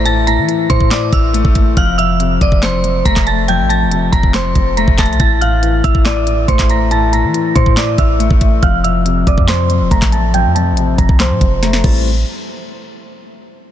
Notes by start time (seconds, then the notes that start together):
Already playing: A1 A2 E3 A3
0.05 A2 A5 A6, closed hi-hat
0.27 A2 A#5 A#6, closed hi-hat
0.38 E3
0.48 E3, closed hi-hat
0.69 A2 C5 C6, kick, closed hi-hat
0.80 kick
0.91 A2 D5 D6, snare, clap, closed hi-hat
1.13 A1 A2 E5 E6, kick, closed hi-hat
1.33 A3, closed hi-hat
1.45 A1, kick
1.55 A3, kick, closed hi-hat
1.77 F1 F2 F5 F6, kick, closed hi-hat
1.98 F2 E5 E6, closed hi-hat
2.19 C3, closed hi-hat
2.41 F1 F2 D5 D6, kick, closed hi-hat
2.52 kick
2.62 F2 C5 C6, snare, clap, closed hi-hat
2.84 F2, closed hi-hat
3.05 F1 A3 A#5 A#6, kick, closed hi-hat
3.16 kick, snare, clap
3.27 A3 A5 A6, closed hi-hat
3.48 F2 G5 G6, closed hi-hat
3.59 A1
3.69 F2 A5 A6, closed hi-hat
3.86 F1
3.91 C3, closed hi-hat
4.12 F1 F2 A#5 A#6, kick, closed hi-hat
4.23 kick
4.34 F2 C5 C6, snare, clap, closed hi-hat
4.55 F1 F2, kick, closed hi-hat
4.77 A3 A#5 A#6, closed hi-hat
4.88 F1, kick
4.98 A3 A5 A6, kick, snare, clap, closed hi-hat, open hi-hat
5.06 C2, closed hi-hat
5.13 closed hi-hat
5.20 A1 A2 A5 A6, kick, closed hi-hat
5.41 A2 F5 F6, closed hi-hat
5.63 E3, closed hi-hat
5.84 A1 A2 E5 E6, kick, closed hi-hat
5.95 kick
6.05 A2 D5 D6, snare, clap, closed hi-hat
6.27 A2, closed hi-hat
6.48 A1 A3 C5 C6, kick, closed hi-hat
6.59 kick, snare, clap
6.69 A3 A#5 A#6, closed hi-hat
6.91 A2 A5 A6, closed hi-hat
7.13 A2 A#5 A#6, closed hi-hat
7.23 E3
7.34 E3, closed hi-hat
7.55 A2 C5 C6, kick, closed hi-hat
7.66 kick
7.77 A2 D5 D6, snare, clap, closed hi-hat
7.98 A1 A2 E5 E6, kick, closed hi-hat
8.19 A3, closed hi-hat
8.31 A1, kick
8.41 A3, kick, closed hi-hat
8.63 F1 F2 F5 F6, kick, closed hi-hat
8.84 F2 E5 E6, closed hi-hat
9.05 C3, closed hi-hat
9.27 F1 F2 D5 D6, kick, closed hi-hat
9.38 F2, kick
9.48 F2 C5 C6, snare, clap, closed hi-hat
9.69 F2, closed hi-hat
9.80 E1
9.91 F1 A3 A#5 A#6, kick, closed hi-hat
10.02 A1, kick, snare, clap
10.12 A3 A5 A6, closed hi-hat
10.34 F2 G5 G6, closed hi-hat
10.45 F2
10.55 F2 A5 A6, closed hi-hat
10.72 A1
10.77 C3, closed hi-hat
10.98 F1 F2 A#5 A#6, kick, closed hi-hat
11.09 C2, kick
11.20 F2 C5 C6, snare, clap, closed hi-hat
11.30 A2
11.41 F1 F2, kick, closed hi-hat
11.63 A3 A#5 A#6, snare, closed hi-hat
11.73 snare
11.84 A1 E3 G3 A3 C4 A6, kick, crash